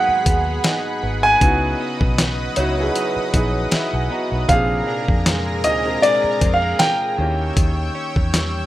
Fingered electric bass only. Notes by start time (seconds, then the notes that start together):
0.09 muted fingered electric bass stroke
0.26 D#2
1.03 G#1
1.42 C#2
2.01 B1
2.57 C#2
3.16 muted fingered electric bass stroke
3.34 A#1
3.72 muted fingered electric bass stroke
3.93 B1
4.32 B1
4.49 A#1
5.09 F2
5.65 D2
6.24 muted fingered electric bass stroke
6.42 F2
7.18 D#2
7.57 D#2
8.16 E2